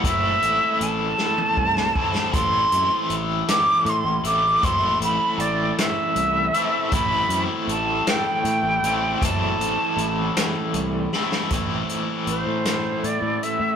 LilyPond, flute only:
\new Staff \with { instrumentName = "Flute" } { \time 6/8 \key a \minor \tempo 4. = 52 e''4 a''2 | c'''4 r8 d'''8 c'''8 d'''8 | c'''8 b''8 d''8 e''4. | b''8 r8 a''8 g''4. |
a''2 r4 | r4 c''4 d''8 e''8 | }